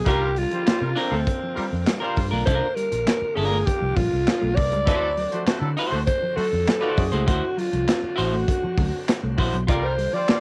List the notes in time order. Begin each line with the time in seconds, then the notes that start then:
0.05 C2 D3 G3 A#3 D4 F4 G4 A#4, kick, closed hi-hat
0.22 muted clean electric guitar stroke
0.36 G3 F4, open hi-hat
0.51 F3 G3 F4 C5, closed hi-hat
0.66 G3 A#3 F4 C5, muted fingered electric bass stroke, snare, clap, closed hi-hat
0.81 C3 G3 F4 A#4, muted clean electric guitar stroke
0.96 C4 D4 F4 A#4, open hi-hat
1.10 D2 A3 F4 A4
1.27 muted clean electric guitar stroke, kick, closed hi-hat
1.43 F3
1.56 G3 F4 A#4, muted fingered electric bass stroke, open hi-hat
1.73 F2
1.86 G3, snare, clap, closed hi-hat
2.00 G3 D4 F4 A#4 C5, muted clean electric guitar stroke
2.16 G2, kick, open hi-hat
2.31 B1 A3 D4 F4 A#4
2.45 C2 D4 F4 A#4 C5, kick, closed hi-hat
2.62 muted clean electric guitar stroke
2.75 G3 A#4, closed hi-hat
2.92 A#1 F3, closed hi-hat
3.06 A#3, snare, clap, closed hi-hat
3.22 muted clean electric guitar stroke, muted fingered electric bass stroke
3.35 G1 D4 F4 G#4 A#4, open hi-hat
3.51 A3
3.66 G4, kick, closed hi-hat
3.80 C2 F3
3.96 A#1 G3 F4, kick, open hi-hat
4.13 C2
4.27 snare, clap, closed hi-hat
4.41 B1 A3
4.56 C2 D5, kick, open hi-hat
4.71 C#2 G3, closed hi-hat
4.85 D2 D3 F#3 C4 E4 F#4 A4 C5, kick, closed hi-hat
5.02 muted clean electric guitar stroke
5.17 F#3, open hi-hat
5.31 F3 A3 F#4 C5, closed hi-hat
5.46 A3 C4 F#4 C5, muted fingered electric bass stroke, snare, clap, closed hi-hat
5.60 D3 F#3 E4 A4
5.77 E4 F#4 C5, open hi-hat
5.91 D2 A3 F#4 C5
6.07 C5, muted clean electric guitar stroke, kick, closed hi-hat
6.22 F3
6.36 F#3 A3 F#4 A4 C5, muted fingered electric bass stroke, open hi-hat
6.53 F2
6.67 F#3, snare, clap, closed hi-hat
6.81 A3 E4 F#4 C5 D5, muted clean electric guitar stroke
6.97 F#2 G#4, kick, open hi-hat
7.12 C#2 A3 E4 F#4 C5, closed hi-hat
7.26 D2 E4 F#4 C5, kick, closed hi-hat
7.43 muted clean electric guitar stroke
7.57 F#3 F4, open hi-hat
7.73 C2 F3, closed hi-hat
7.88 C4, snare, clap, closed hi-hat
8.03 muted clean electric guitar stroke, muted fingered electric bass stroke
8.16 A1 E4 F#4 C5, open hi-hat
8.33 A3
8.48 muted clean electric guitar stroke, kick, closed hi-hat
8.64 F3, muted fingered electric bass stroke
8.78 D2 F#3, kick, open hi-hat
9.08 snare, clap, closed hi-hat
9.24 C2 A3
9.38 A#1 E4 F#4 C5, muted clean electric guitar stroke, kick, open hi-hat
9.53 B1 F#3, closed hi-hat
9.67 C2 D3 G3 A#3 F4 A#4 D5, kick, closed hi-hat
9.84 C5, muted clean electric guitar stroke
9.98 G3, open hi-hat
10.13 F3 G3 F4 C5 D5
10.28 G3 A#3 F4 C5, muted fingered electric bass stroke, snare, clap, closed hi-hat